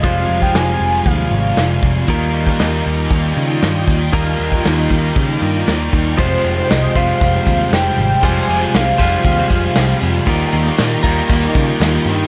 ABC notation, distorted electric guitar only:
X:1
M:4/4
L:1/8
Q:1/4=117
K:Fm
V:1 name="Distorted electric guitar" clef=bass
[F,,C,F,]8 | [E,B,E]8 | [E,B,E]8 | [F,,C,F,]3 [F,,C,F,]4- [F,,C,F,] |
[F,,C,F,]3 [F,,C,F,]4- [F,,C,F,] | [E,B,E]3 [E,B,E]4- [E,B,E] |]